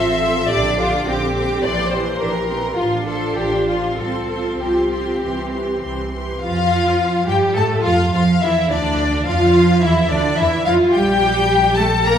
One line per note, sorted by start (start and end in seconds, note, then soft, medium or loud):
0.00 0.44 A1 medium
0.00 0.21 F3 soft
0.00 0.50 C4 medium
0.00 0.21 A4 medium
0.00 0.50 E5 medium
0.00 0.22 C6 medium
0.22 0.50 F3 soft
0.22 0.50 A4 soft
0.22 0.51 C6 soft
0.50 1.00 A#1 medium
0.50 0.77 D3 soft
0.50 1.06 D4 medium
0.50 0.77 G4 soft
0.50 0.79 D5 medium
0.50 0.77 D6 medium
0.78 1.06 D3 medium
0.78 1.07 F4 medium
0.78 1.05 G4 medium
0.78 1.06 D6 medium
1.06 1.57 A#1 medium
1.06 1.33 D3 medium
1.06 1.63 C4 medium
1.06 1.33 G4 soft
1.06 1.64 G4 medium
1.06 1.35 D6 medium
1.34 1.63 D3 soft
1.34 1.63 G4 soft
1.34 1.64 D6 soft
1.63 2.14 A#1 medium
1.63 1.91 E3 medium
1.63 2.20 A#3 medium
1.63 1.91 G4 medium
1.63 1.92 D5 medium
1.63 1.92 C6 medium
1.90 2.20 E3 soft
1.90 2.20 G4 soft
1.90 2.19 C5 medium
1.90 2.20 C6 soft
2.19 2.71 A#1 soft
2.19 2.49 E3 soft
2.19 2.28 D4 medium
2.19 2.49 G4 soft
2.19 2.77 A#4 medium
2.19 2.48 C6 soft
2.49 2.78 E3 soft
2.49 2.57 C4 soft
2.49 2.78 G4 soft
2.49 2.77 C6 soft
2.76 3.29 A1 medium
2.76 3.07 F3 soft
2.76 3.96 D4 medium
2.76 3.06 F4 medium
2.76 3.06 F4 soft
2.76 3.06 C6 soft
3.06 3.36 F3 soft
3.06 3.36 F4 soft
3.06 3.35 A4 medium
3.06 3.36 C6 soft
3.35 3.91 A1 soft
3.35 3.67 F3 soft
3.35 3.67 F4 soft
3.35 3.67 G4 medium
3.35 3.67 C6 soft
3.68 3.98 F3 soft
3.68 3.98 F4 soft
3.68 3.98 C6 soft
3.98 4.53 C2 soft
3.98 4.29 F3 soft
3.98 6.09 C4 soft
3.98 4.29 F4 soft
3.98 4.61 A4 medium
3.98 4.29 C6 soft
4.31 4.61 F3 soft
4.31 4.61 F4 soft
4.31 4.61 C6 soft
4.60 5.15 C2 soft
4.60 4.91 F3 soft
4.60 4.91 F4 soft
4.60 5.84 G4 soft
4.60 4.92 C6 soft
4.92 5.22 F3 soft
4.92 5.22 F4 soft
4.92 5.21 C6 soft
5.22 5.76 C2 soft
5.22 5.53 E3 soft
5.22 5.53 G4 soft
5.22 5.51 C6 soft
5.53 5.83 E3 soft
5.53 5.83 G4 soft
5.53 5.82 C6 soft
5.83 6.36 C2 soft
5.83 6.14 E3 soft
5.83 6.13 G4 soft
5.83 6.12 C6 soft
6.13 6.43 E3 soft
6.13 6.43 G4 soft
6.13 6.42 C6 soft
6.41 7.24 F2 medium
6.41 7.24 F3 medium
6.41 7.23 F4 medium
6.41 7.25 F4 medium
6.41 7.23 F5 medium
7.27 7.56 G2 medium
7.27 7.57 G3 medium
7.27 7.56 G4 medium
7.27 7.57 G4 medium
7.27 7.37 G5 medium
7.55 7.85 A2 medium
7.55 7.85 A3 medium
7.55 7.84 A4 medium
7.55 7.86 A4 medium
7.55 7.65 A5 medium
7.82 8.12 F2 medium
7.82 7.94 F3 medium
7.82 8.12 F4 medium
7.82 8.12 F5 medium
7.87 7.95 F4 medium
8.13 8.41 F2 medium
8.13 8.41 F3 medium
8.13 8.21 F4 medium
8.13 8.23 F4 medium
8.13 8.41 F5 medium
8.42 8.70 E2 medium
8.42 8.70 E3 medium
8.42 8.69 E4 medium
8.42 8.51 E4 medium
8.42 8.71 E5 medium
8.70 9.27 D2 medium
8.70 9.26 D3 medium
8.70 9.27 D4 medium
8.70 9.26 D4 medium
8.70 9.26 D5 medium
9.26 9.82 F2 medium
9.26 9.82 F3 medium
9.26 9.83 F4 medium
9.26 9.82 F4 medium
9.26 9.82 F5 medium
9.82 10.11 E2 medium
9.82 10.11 E3 medium
9.82 10.10 E4 medium
9.82 10.11 E4 medium
9.82 10.11 E5 medium
10.11 10.19 D2 medium
10.11 10.39 D3 medium
10.11 10.39 D4 medium
10.11 10.20 D4 medium
10.11 10.39 D5 medium
10.37 10.48 E2 medium
10.37 10.67 E3 medium
10.37 10.66 E4 medium
10.37 10.48 E4 medium
10.37 10.66 E5 medium
10.66 10.75 F2 medium
10.66 10.75 F3 medium
10.66 10.94 F4 medium
10.66 10.95 F4 medium
10.66 10.74 F5 medium
10.94 12.18 A#1 medium
10.94 11.76 G3 medium
10.94 11.78 G4 medium
10.94 11.79 G4 medium
10.94 11.76 G5 loud
11.77 11.85 A3 medium
11.77 12.06 A4 medium
11.77 11.86 A4 medium
11.77 12.06 A5 medium
12.05 12.18 A#3 medium
12.05 12.18 A#4 medium
12.05 12.18 A#5 loud